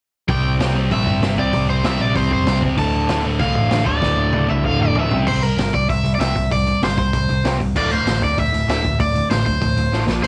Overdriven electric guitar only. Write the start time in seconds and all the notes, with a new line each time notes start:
0.30 G5
0.92 E5
1.39 D5
1.70 C5
1.85 E5
2.01 D5
2.16 C5
2.33 C5
2.79 A5
3.41 F5
3.86 D5
4.50 E5
4.66 F5
4.83 D5
5.00 E5
5.28 C5
5.43 A#4
5.74 D5
5.90 E5
6.15 D5
6.21 E5
6.52 D5
6.84 C5
6.99 C5
7.78 D5
7.93 C5
8.24 D5
8.40 E5
8.71 E5
9.01 D5
9.31 C5
9.46 C5
10.23 C5